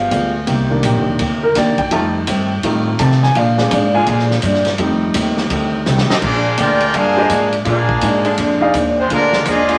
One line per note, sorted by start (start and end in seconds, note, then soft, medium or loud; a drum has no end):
0.00 0.10 G1 medium
0.00 0.30 F3 medium
0.00 0.43 F3 medium
0.00 0.29 G#3 medium
0.00 0.44 G#3 soft
0.00 0.30 B3 medium
0.00 0.44 B3 medium
0.00 0.29 G4 loud
0.00 0.31 F5 medium
0.09 0.46 D2 loud
0.09 0.35 G3 medium
0.09 0.35 B3 medium
0.09 0.36 F4 medium
0.09 0.36 G#4 medium
0.09 kick soft
0.09 hi-hat pedal medium
0.09 ride medium
0.46 0.82 C2 medium
0.46 0.71 C3 medium
0.46 1.47 D#3 loud
0.46 0.71 A#3 medium
0.46 1.47 A#3 medium
0.46 1.47 C4 medium
0.46 0.72 D#4 medium
0.46 1.47 G4 loud
0.46 0.72 G4 medium
0.46 kick soft
0.46 ride medium
0.70 1.17 D#3 soft
0.70 1.17 A#3 soft
0.70 1.17 D4 medium
0.83 0.95 A#1 loud
0.83 1.07 C3 medium
0.83 1.08 A#3 medium
0.83 1.08 D#4 medium
0.83 1.08 G4 medium
0.83 kick soft
0.83 hi-hat pedal medium
0.83 ride medium
0.95 1.07 G1 medium
1.08 1.19 D#1 medium
1.19 1.54 D2 medium
1.19 1.44 C3 medium
1.19 1.44 A#3 medium
1.19 1.44 D#4 medium
1.19 1.45 G4 medium
1.19 kick soft
1.19 ride medium
1.43 1.55 A#4 medium
1.55 1.77 D#2 loud
1.55 1.80 C3 medium
1.55 1.76 D#3 soft
1.55 1.76 A#3 soft
1.55 1.80 A#3 medium
1.55 1.76 D4 medium
1.55 1.81 D#4 medium
1.55 1.81 G4 medium
1.55 1.78 D5 medium
1.55 kick soft
1.55 snare soft
1.55 hi-hat pedal medium
1.55 ride medium
1.78 1.91 G5 medium
1.78 muted upright bass stroke soft
1.78 kick medium
1.78 ride medium
1.91 2.26 F2 medium
1.91 2.16 F2 medium
1.91 2.16 D#3 soft
1.91 2.08 D#3 medium
1.91 2.18 G3 medium
1.91 2.18 A3 medium
1.91 2.07 A3 medium
1.91 2.17 A3 medium
1.91 2.07 C4 medium
1.91 2.17 C4 medium
1.91 2.19 D#4 medium
1.91 2.07 F4 loud
1.91 2.47 A5 medium
1.91 kick soft
1.91 ride medium
2.27 2.52 F2 medium
2.27 2.62 G2 loud
2.27 2.52 D#3 medium
2.27 2.53 A3 medium
2.27 2.53 C4 medium
2.27 kick soft
2.27 hi-hat pedal medium
2.27 ride medium
2.63 2.88 F2 medium
2.63 2.98 A2 loud
2.63 3.18 D#3 loud
2.63 2.88 D#3 medium
2.63 2.84 G3 soft
2.63 3.18 A3 medium
2.63 2.84 A3 soft
2.63 2.89 A3 medium
2.63 3.18 C4 medium
2.63 2.89 C4 medium
2.63 2.84 D#4 medium
2.63 3.18 F4 loud
2.63 kick soft
2.63 ride medium
2.99 3.24 F2 medium
2.99 3.34 C3 loud
2.99 3.24 D#3 medium
2.99 3.24 A3 medium
2.99 3.24 C4 medium
2.99 3.22 A5 medium
2.99 kick soft
2.99 hi-hat pedal medium
2.99 ride medium
3.12 snare soft
3.23 3.35 G#5 medium
3.23 snare medium
3.35 3.70 A#2 medium
3.35 3.59 A#2 medium
3.35 3.50 D3 medium
3.35 3.60 F3 medium
3.35 3.50 G#3 medium
3.35 3.60 G#3 medium
3.35 3.50 A#3 medium
3.35 3.61 D4 medium
3.35 3.51 F4 loud
3.35 3.91 F5 medium
3.35 kick soft
3.35 ride medium
3.58 3.79 G#3 medium
3.58 3.79 C4 medium
3.58 3.79 D4 medium
3.58 snare medium
3.71 4.06 G#2 loud
3.71 3.95 A#2 medium
3.71 3.96 F3 medium
3.71 3.96 G#3 medium
3.71 3.96 D4 medium
3.71 kick soft
3.71 hi-hat pedal medium
3.71 ride medium
3.94 4.41 D3 loud
3.94 4.41 G#3 loud
3.94 4.40 A#3 loud
3.94 4.41 F4 loud
3.94 4.07 G#5 medium
4.06 4.42 A#2 loud
4.06 4.31 A#2 soft
4.06 4.32 F3 medium
4.06 4.32 G#3 medium
4.06 4.33 D4 medium
4.06 4.22 G#5 medium
4.06 kick soft
4.06 ride medium
4.19 snare soft
4.31 snare soft
4.42 4.78 G2 loud
4.42 4.68 A#2 medium
4.42 4.68 F3 medium
4.42 4.68 G#3 medium
4.42 4.68 D4 medium
4.42 kick soft
4.42 hi-hat pedal medium
4.42 ride medium
4.54 snare soft
4.65 snare medium
4.65 ride medium
4.78 5.13 F2 loud
4.78 5.03 F2 medium
4.78 5.03 D#3 medium
4.78 6.19 G3 medium
4.78 6.19 A3 medium
4.78 5.04 A3 medium
4.78 5.04 C4 medium
4.78 6.19 D#4 medium
4.78 kick soft
4.78 ride medium
5.14 5.49 D#2 loud
5.14 5.38 F2 medium
5.14 5.39 D#3 medium
5.14 5.39 A3 medium
5.14 5.39 C4 medium
5.14 kick soft
5.14 hi-hat pedal medium
5.14 ride medium
5.38 snare soft
5.50 5.85 D2 loud
5.50 5.75 F2 medium
5.50 5.75 D#3 medium
5.50 5.76 A3 medium
5.50 5.76 C4 medium
5.50 kick soft
5.50 ride medium
5.86 6.08 C2 loud
5.86 6.11 F2 medium
5.86 6.11 D#3 medium
5.86 6.11 A3 medium
5.86 6.11 C4 medium
5.86 snare medium
5.86 hi-hat pedal medium
5.98 snare medium
6.09 6.15 A3 medium
6.09 6.15 C4 medium
6.09 6.16 C4 medium
6.09 6.15 D#4 medium
6.09 6.16 F4 medium
6.09 6.16 A4 medium
6.09 6.16 D#5 loud
6.09 muted upright bass stroke soft
6.09 snare loud
6.22 6.57 A#1 medium
6.22 6.46 A#2 medium
6.22 6.56 F3 medium
6.22 6.47 F3 soft
6.22 6.56 G#3 medium
6.22 6.47 G#3 medium
6.22 6.56 A#3 medium
6.22 6.55 D4 medium
6.22 6.48 D4 medium
6.22 6.56 F4 medium
6.22 6.56 G#4 medium
6.22 6.56 D5 loud
6.22 kick medium
6.22 crash medium
6.57 6.93 D2 loud
6.57 6.83 A#2 medium
6.57 6.83 F3 medium
6.57 6.94 G#3 medium
6.57 6.83 G#3 medium
6.57 6.93 D4 loud
6.57 6.84 D4 medium
6.57 6.95 F4 loud
6.57 6.94 G4 medium
6.57 6.95 A#4 medium
6.57 6.95 D5 medium
6.57 6.95 G5 loud
6.57 kick soft
6.57 hi-hat pedal medium
6.57 ride medium
6.80 ride medium
6.93 7.29 G2 medium
6.93 7.19 A#2 medium
6.93 7.19 F3 medium
6.93 7.20 G#3 medium
6.93 7.53 D4 medium
6.93 7.54 D4 loud
6.93 7.20 D4 medium
6.93 7.53 F4 medium
6.93 7.53 G#4 medium
6.93 7.54 G#4 medium
6.93 7.54 A#4 medium
6.93 7.54 F5 loud
6.93 kick soft
6.93 ride medium
7.16 7.26 D3 medium
7.16 7.25 G#3 medium
7.16 7.26 A#3 medium
7.16 7.29 D4 medium
7.16 7.25 F4 loud
7.16 7.29 G4 medium
7.16 7.29 C5 medium
7.16 7.29 D#5 medium
7.29 7.65 G#2 medium
7.29 7.54 A#2 medium
7.29 7.55 F3 medium
7.29 7.55 G#3 medium
7.29 7.55 D4 medium
7.29 kick soft
7.29 hi-hat pedal medium
7.29 ride medium
7.52 ride medium
7.65 8.01 A#2 medium
7.65 7.91 A#2 soft
7.65 7.82 D3 loud
7.65 7.91 F3 medium
7.65 7.81 G#3 medium
7.65 8.34 G#3 medium
7.65 7.92 G#3 medium
7.65 7.81 A#3 medium
7.65 8.34 D4 medium
7.65 8.35 D4 medium
7.65 7.92 D4 medium
7.65 7.81 F4 loud
7.65 8.35 F4 medium
7.65 8.34 G#4 medium
7.65 8.34 A#4 medium
7.65 8.34 F5 loud
7.65 kick soft
7.65 ride medium
7.89 kick medium
8.01 8.37 G#2 loud
8.01 8.26 A#2 medium
8.01 8.27 F3 medium
8.01 8.27 G#3 medium
8.01 8.27 D4 medium
8.01 kick soft
8.01 hi-hat pedal medium
8.01 ride medium
8.25 8.72 D3 loud
8.25 8.72 G#3 loud
8.25 8.71 A#3 loud
8.25 8.72 D4 loud
8.25 ride medium
8.37 8.73 F2 medium
8.37 8.62 A#2 medium
8.37 8.63 F3 medium
8.37 8.63 G#3 medium
8.37 8.64 D4 medium
8.37 kick soft
8.37 ride medium
8.61 8.73 D#4 medium
8.61 8.73 G#4 medium
8.61 8.73 D5 medium
8.61 8.73 F5 medium
8.74 9.09 D#2 loud
8.74 8.98 A#2 medium
8.74 8.99 F3 medium
8.74 8.99 G#3 medium
8.74 8.99 D4 medium
8.74 kick soft
8.74 hi-hat pedal medium
8.74 ride medium
8.98 9.10 G#3 medium
8.98 9.09 C4 medium
8.98 9.10 D4 medium
8.98 9.10 F4 medium
8.98 9.10 C5 medium
9.09 9.45 D2 medium
9.09 9.35 A#2 medium
9.09 9.25 D3 medium
9.09 9.44 D3 medium
9.09 9.44 F3 medium
9.09 9.35 F3 medium
9.09 9.25 G#3 medium
9.09 9.45 G#3 loud
9.09 9.35 G#3 medium
9.09 9.25 A#3 medium
9.09 9.44 A#3 medium
9.09 9.44 D4 medium
9.09 9.26 F4 loud
9.09 9.45 F4 medium
9.09 9.45 A#4 loud
9.09 kick soft
9.09 ride medium
9.14 9.36 D4 medium
9.33 snare medium
9.45 9.78 D#2 loud
9.45 9.70 A#2 medium
9.45 9.78 F3 loud
9.45 9.71 F3 medium
9.45 9.78 G#3 medium
9.45 9.71 G#3 medium
9.45 9.78 A#3 loud
9.45 9.71 D4 medium
9.45 9.78 D#4 medium
9.45 9.78 F4 loud
9.45 9.78 G#4 loud
9.45 9.78 D#5 loud
9.45 kick soft
9.45 hi-hat pedal medium
9.45 ride medium
9.68 9.78 D3 loud
9.68 9.78 G#3 loud
9.68 9.78 A#3 loud
9.68 9.78 F4 loud
9.68 ride medium